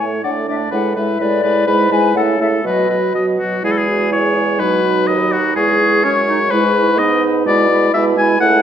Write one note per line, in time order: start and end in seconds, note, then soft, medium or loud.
0.00 0.18 A2 soft
0.00 0.23 A3 soft
0.00 0.23 E4 soft
0.00 0.23 C#5 soft
0.23 0.67 A2 soft
0.23 0.48 A3 soft
0.23 0.47 D4 soft
0.23 0.48 D5 soft
0.23 0.29 F#5 soft
0.48 0.72 A3 soft
0.48 0.72 D4 soft
0.48 0.71 D5 soft
0.48 0.54 E5 soft
0.71 1.14 A2 soft
0.71 0.96 G#3 soft
0.71 0.96 E4 soft
0.71 0.95 B4 soft
0.71 0.98 F#5 medium
0.96 1.20 G#3 soft
0.96 1.19 E4 soft
0.96 1.19 B4 soft
0.96 1.23 E5 medium
1.20 1.61 A2 soft
1.20 1.43 G#3 soft
1.20 1.42 E4 soft
1.20 1.43 B4 soft
1.20 1.67 D5 medium
1.43 1.67 G#3 soft
1.43 1.66 E4 soft
1.43 1.66 B4 soft
1.67 2.09 G#2 medium
1.67 1.91 G#3 medium
1.67 1.90 E4 medium
1.67 1.90 B4 medium
1.67 1.93 B5 medium
1.91 2.15 G#3 soft
1.91 2.14 E4 soft
1.91 2.15 B4 soft
1.91 2.14 G#5 medium
2.15 2.58 C#3 medium
2.15 2.39 A3 medium
2.15 2.37 E4 soft
2.15 2.40 A4 soft
2.15 2.21 F#5 medium
2.38 2.64 A3 soft
2.38 2.62 E4 soft
2.38 2.65 A4 soft
2.38 2.46 E5 medium
2.63 3.00 B2 soft
2.63 2.89 F#3 soft
2.63 2.88 F#4 soft
2.63 2.90 B4 soft
2.63 3.14 D#5 medium
2.89 3.14 F#3 soft
2.89 3.13 F#4 soft
2.89 3.14 B4 soft
3.13 3.58 B2 soft
3.13 3.39 F#3 soft
3.13 3.38 F#4 soft
3.13 3.26 D#5 soft
3.38 3.64 F#3 soft
3.38 3.62 F#4 soft
3.63 4.61 E2 soft
3.63 4.61 G#3 soft
3.63 3.89 E4 soft
3.63 3.73 G#4 medium
3.63 4.14 B5 soft
3.72 3.80 A4 soft
3.78 4.12 G#4 soft
3.88 4.12 F#4 soft
4.11 4.35 E4 soft
4.11 4.62 C#5 medium
4.11 4.62 G#5 soft
4.35 4.60 E4 soft
4.59 5.07 B2 soft
4.59 5.39 F#3 soft
4.59 4.83 D#4 soft
4.59 5.09 B4 medium
4.59 5.08 B5 soft
4.84 5.57 D#4 soft
5.07 5.55 D#2 soft
5.07 5.34 D#5 medium
5.07 5.58 B5 soft
5.32 5.55 F#4 medium
5.56 6.06 E2 soft
5.56 6.50 G#3 soft
5.56 5.79 E4 soft
5.56 6.06 G#4 medium
5.56 6.04 C#6 soft
5.80 6.04 E4 soft
6.04 6.53 F#2 soft
6.04 6.15 C#4 soft
6.04 6.52 C#5 medium
6.04 7.01 C#6 soft
6.28 6.39 D#4 soft
6.51 7.45 G#2 soft
6.51 7.00 G#3 soft
6.51 6.63 E4 soft
6.51 7.00 B4 medium
6.77 7.01 E4 soft
6.98 7.45 B3 soft
6.98 7.46 D#4 soft
6.98 7.23 D#5 medium
6.98 7.46 B5 soft
7.46 7.88 B2 medium
7.46 7.69 G#3 soft
7.46 7.69 E4 medium
7.46 7.91 D5 medium
7.46 7.70 B5 medium
7.70 7.93 G#3 soft
7.70 7.93 E4 soft
7.70 7.94 B5 soft
7.93 8.35 B2 medium
7.93 8.16 G#3 soft
7.93 8.17 E4 soft
7.93 8.05 E5 medium
7.93 8.18 B5 medium
8.16 8.39 G#3 soft
8.16 8.39 E4 medium
8.16 8.40 G#5 medium
8.16 8.41 B5 medium
8.39 8.62 C#2 medium
8.39 8.62 A3 medium
8.39 8.62 E4 medium
8.39 8.62 F#5 medium
8.39 8.62 A5 medium